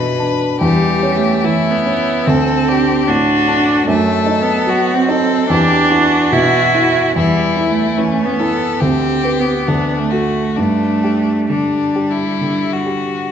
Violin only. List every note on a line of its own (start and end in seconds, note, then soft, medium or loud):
0.00 0.61 B4 medium
0.62 1.46 G4 medium
1.44 2.30 E4 medium
2.28 2.70 A4 medium
2.69 3.12 G4 medium
3.10 3.89 F#4 medium
3.90 4.71 A4 medium
4.69 5.11 F#4 medium
5.09 5.53 A4 medium
5.51 5.92 G4 medium
5.91 7.17 F#4 medium
7.17 7.99 E4 medium
7.97 8.41 C#4 soft
8.39 8.82 A4 medium
8.80 9.69 G4 medium
9.68 10.13 D4 soft
10.11 10.58 F#4 soft
10.57 11.40 D4 soft
11.49 12.12 D4 soft
12.11 12.74 E4 soft
12.73 13.32 F#4 soft